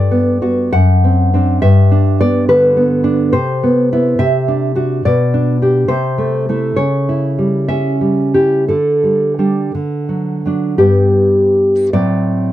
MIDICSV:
0, 0, Header, 1, 2, 480
1, 0, Start_track
1, 0, Tempo, 609137
1, 1287, Time_signature, 6, 3, 24, 8
1, 1287, Tempo, 570885
1, 5127, Tempo, 595829
1, 6087, Tempo, 636943
1, 6567, Tempo, 691244
1, 7527, Tempo, 698487
1, 8487, Tempo, 736196
1, 9447, Tempo, 636267
1, 9631, End_track
2, 0, Start_track
2, 0, Title_t, "Nylon-string guitar"
2, 0, Program_c, 0, 24
2, 0, Note_on_c, 0, 43, 48
2, 0, Note_on_c, 0, 74, 71
2, 89, Note_on_c, 0, 59, 39
2, 320, Note_off_c, 0, 59, 0
2, 329, Note_on_c, 0, 59, 40
2, 332, Note_on_c, 0, 66, 43
2, 546, Note_off_c, 0, 74, 0
2, 551, Note_off_c, 0, 59, 0
2, 552, Note_off_c, 0, 66, 0
2, 556, Note_off_c, 0, 43, 0
2, 572, Note_on_c, 0, 78, 73
2, 579, Note_on_c, 0, 42, 50
2, 821, Note_on_c, 0, 60, 43
2, 1044, Note_off_c, 0, 60, 0
2, 1054, Note_on_c, 0, 60, 41
2, 1062, Note_on_c, 0, 62, 46
2, 1253, Note_off_c, 0, 78, 0
2, 1262, Note_off_c, 0, 60, 0
2, 1264, Note_off_c, 0, 42, 0
2, 1266, Note_off_c, 0, 62, 0
2, 1275, Note_on_c, 0, 43, 53
2, 1275, Note_on_c, 0, 76, 73
2, 1524, Note_on_c, 0, 62, 45
2, 1742, Note_off_c, 0, 76, 0
2, 1768, Note_on_c, 0, 59, 46
2, 1768, Note_on_c, 0, 74, 79
2, 1995, Note_off_c, 0, 74, 0
2, 2006, Note_on_c, 0, 71, 76
2, 2010, Note_on_c, 0, 50, 44
2, 2230, Note_off_c, 0, 59, 0
2, 2238, Note_off_c, 0, 62, 0
2, 2240, Note_on_c, 0, 59, 49
2, 2469, Note_on_c, 0, 62, 49
2, 2684, Note_off_c, 0, 43, 0
2, 2695, Note_off_c, 0, 71, 0
2, 2711, Note_on_c, 0, 72, 77
2, 2718, Note_on_c, 0, 48, 52
2, 2719, Note_off_c, 0, 62, 0
2, 2724, Note_off_c, 0, 59, 0
2, 2725, Note_off_c, 0, 50, 0
2, 2969, Note_on_c, 0, 59, 45
2, 3204, Note_off_c, 0, 59, 0
2, 3214, Note_on_c, 0, 64, 47
2, 3217, Note_on_c, 0, 59, 43
2, 3415, Note_off_c, 0, 72, 0
2, 3426, Note_off_c, 0, 48, 0
2, 3428, Note_off_c, 0, 59, 0
2, 3428, Note_off_c, 0, 64, 0
2, 3435, Note_on_c, 0, 48, 55
2, 3436, Note_on_c, 0, 76, 82
2, 3682, Note_on_c, 0, 62, 45
2, 3901, Note_off_c, 0, 62, 0
2, 3911, Note_on_c, 0, 62, 40
2, 3916, Note_on_c, 0, 66, 45
2, 4133, Note_off_c, 0, 76, 0
2, 4137, Note_off_c, 0, 62, 0
2, 4140, Note_off_c, 0, 66, 0
2, 4141, Note_off_c, 0, 48, 0
2, 4162, Note_on_c, 0, 74, 63
2, 4164, Note_on_c, 0, 47, 54
2, 4403, Note_on_c, 0, 62, 42
2, 4629, Note_off_c, 0, 62, 0
2, 4639, Note_on_c, 0, 62, 40
2, 4642, Note_on_c, 0, 67, 42
2, 4852, Note_off_c, 0, 74, 0
2, 4856, Note_off_c, 0, 62, 0
2, 4857, Note_off_c, 0, 67, 0
2, 4860, Note_on_c, 0, 72, 71
2, 4861, Note_off_c, 0, 47, 0
2, 4864, Note_on_c, 0, 48, 51
2, 5111, Note_on_c, 0, 57, 42
2, 5351, Note_off_c, 0, 57, 0
2, 5361, Note_on_c, 0, 57, 36
2, 5366, Note_on_c, 0, 64, 41
2, 5561, Note_off_c, 0, 72, 0
2, 5570, Note_off_c, 0, 48, 0
2, 5577, Note_off_c, 0, 57, 0
2, 5579, Note_off_c, 0, 64, 0
2, 5581, Note_on_c, 0, 73, 66
2, 5586, Note_on_c, 0, 49, 48
2, 5842, Note_on_c, 0, 64, 35
2, 6081, Note_on_c, 0, 55, 38
2, 6284, Note_off_c, 0, 73, 0
2, 6308, Note_on_c, 0, 76, 63
2, 6311, Note_on_c, 0, 61, 36
2, 6544, Note_off_c, 0, 55, 0
2, 6553, Note_on_c, 0, 55, 34
2, 6567, Note_off_c, 0, 64, 0
2, 6779, Note_off_c, 0, 76, 0
2, 6785, Note_on_c, 0, 67, 50
2, 6790, Note_on_c, 0, 64, 35
2, 7013, Note_off_c, 0, 49, 0
2, 7019, Note_off_c, 0, 67, 0
2, 7022, Note_on_c, 0, 69, 47
2, 7025, Note_off_c, 0, 61, 0
2, 7028, Note_on_c, 0, 50, 40
2, 7040, Note_off_c, 0, 55, 0
2, 7040, Note_off_c, 0, 64, 0
2, 7265, Note_on_c, 0, 55, 32
2, 7501, Note_off_c, 0, 55, 0
2, 7509, Note_on_c, 0, 55, 31
2, 7513, Note_on_c, 0, 62, 32
2, 7732, Note_off_c, 0, 55, 0
2, 7734, Note_off_c, 0, 50, 0
2, 7734, Note_off_c, 0, 62, 0
2, 7757, Note_on_c, 0, 50, 41
2, 7991, Note_on_c, 0, 54, 32
2, 8210, Note_off_c, 0, 69, 0
2, 8236, Note_off_c, 0, 54, 0
2, 8245, Note_on_c, 0, 54, 30
2, 8253, Note_on_c, 0, 62, 34
2, 8460, Note_off_c, 0, 54, 0
2, 8461, Note_off_c, 0, 50, 0
2, 8465, Note_off_c, 0, 62, 0
2, 8469, Note_on_c, 0, 67, 61
2, 8473, Note_on_c, 0, 43, 49
2, 8477, Note_on_c, 0, 55, 33
2, 8482, Note_on_c, 0, 59, 32
2, 9187, Note_off_c, 0, 67, 0
2, 9191, Note_off_c, 0, 55, 0
2, 9191, Note_off_c, 0, 59, 0
2, 9194, Note_off_c, 0, 43, 0
2, 9219, Note_on_c, 0, 45, 49
2, 9220, Note_on_c, 0, 74, 74
2, 9221, Note_on_c, 0, 54, 38
2, 9225, Note_on_c, 0, 60, 36
2, 9631, Note_off_c, 0, 45, 0
2, 9631, Note_off_c, 0, 54, 0
2, 9631, Note_off_c, 0, 60, 0
2, 9631, Note_off_c, 0, 74, 0
2, 9631, End_track
0, 0, End_of_file